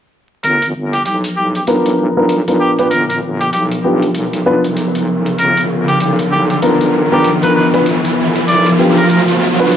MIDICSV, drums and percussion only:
0, 0, Header, 1, 2, 480
1, 0, Start_track
1, 0, Tempo, 618557
1, 341, Time_signature, 4, 2, 24, 8
1, 7580, End_track
2, 0, Start_track
2, 0, Title_t, "Drums"
2, 338, Note_on_c, 9, 42, 72
2, 416, Note_off_c, 9, 42, 0
2, 482, Note_on_c, 9, 42, 54
2, 560, Note_off_c, 9, 42, 0
2, 724, Note_on_c, 9, 42, 36
2, 801, Note_off_c, 9, 42, 0
2, 819, Note_on_c, 9, 42, 75
2, 896, Note_off_c, 9, 42, 0
2, 963, Note_on_c, 9, 42, 50
2, 1041, Note_off_c, 9, 42, 0
2, 1203, Note_on_c, 9, 42, 35
2, 1281, Note_off_c, 9, 42, 0
2, 1297, Note_on_c, 9, 42, 78
2, 1375, Note_off_c, 9, 42, 0
2, 1442, Note_on_c, 9, 42, 52
2, 1519, Note_off_c, 9, 42, 0
2, 1777, Note_on_c, 9, 42, 77
2, 1855, Note_off_c, 9, 42, 0
2, 1923, Note_on_c, 9, 42, 51
2, 2001, Note_off_c, 9, 42, 0
2, 2162, Note_on_c, 9, 42, 33
2, 2240, Note_off_c, 9, 42, 0
2, 2258, Note_on_c, 9, 42, 79
2, 2336, Note_off_c, 9, 42, 0
2, 2404, Note_on_c, 9, 42, 53
2, 2482, Note_off_c, 9, 42, 0
2, 2644, Note_on_c, 9, 42, 38
2, 2722, Note_off_c, 9, 42, 0
2, 2739, Note_on_c, 9, 42, 78
2, 2817, Note_off_c, 9, 42, 0
2, 2883, Note_on_c, 9, 42, 51
2, 2960, Note_off_c, 9, 42, 0
2, 3122, Note_on_c, 9, 42, 35
2, 3200, Note_off_c, 9, 42, 0
2, 3217, Note_on_c, 9, 42, 75
2, 3295, Note_off_c, 9, 42, 0
2, 3363, Note_on_c, 9, 42, 55
2, 3440, Note_off_c, 9, 42, 0
2, 3603, Note_on_c, 9, 42, 36
2, 3681, Note_off_c, 9, 42, 0
2, 3698, Note_on_c, 9, 42, 80
2, 3776, Note_off_c, 9, 42, 0
2, 3842, Note_on_c, 9, 42, 53
2, 3920, Note_off_c, 9, 42, 0
2, 4083, Note_on_c, 9, 42, 34
2, 4160, Note_off_c, 9, 42, 0
2, 4179, Note_on_c, 9, 42, 72
2, 4256, Note_off_c, 9, 42, 0
2, 4324, Note_on_c, 9, 42, 52
2, 4402, Note_off_c, 9, 42, 0
2, 4564, Note_on_c, 9, 42, 38
2, 4641, Note_off_c, 9, 42, 0
2, 4659, Note_on_c, 9, 42, 77
2, 4736, Note_off_c, 9, 42, 0
2, 4804, Note_on_c, 9, 42, 50
2, 4881, Note_off_c, 9, 42, 0
2, 5045, Note_on_c, 9, 42, 36
2, 5122, Note_off_c, 9, 42, 0
2, 5140, Note_on_c, 9, 42, 77
2, 5217, Note_off_c, 9, 42, 0
2, 5283, Note_on_c, 9, 42, 52
2, 5361, Note_off_c, 9, 42, 0
2, 5621, Note_on_c, 9, 42, 80
2, 5698, Note_off_c, 9, 42, 0
2, 5765, Note_on_c, 9, 42, 52
2, 5843, Note_off_c, 9, 42, 0
2, 6005, Note_on_c, 9, 42, 34
2, 6082, Note_off_c, 9, 42, 0
2, 6100, Note_on_c, 9, 42, 75
2, 6177, Note_off_c, 9, 42, 0
2, 6245, Note_on_c, 9, 42, 52
2, 6322, Note_off_c, 9, 42, 0
2, 6485, Note_on_c, 9, 42, 36
2, 6563, Note_off_c, 9, 42, 0
2, 6581, Note_on_c, 9, 42, 75
2, 6658, Note_off_c, 9, 42, 0
2, 6724, Note_on_c, 9, 42, 48
2, 6802, Note_off_c, 9, 42, 0
2, 6963, Note_on_c, 9, 42, 35
2, 7041, Note_off_c, 9, 42, 0
2, 7058, Note_on_c, 9, 42, 74
2, 7136, Note_off_c, 9, 42, 0
2, 7203, Note_on_c, 9, 42, 48
2, 7280, Note_off_c, 9, 42, 0
2, 7442, Note_on_c, 9, 42, 33
2, 7520, Note_off_c, 9, 42, 0
2, 7539, Note_on_c, 9, 42, 76
2, 7580, Note_off_c, 9, 42, 0
2, 7580, End_track
0, 0, End_of_file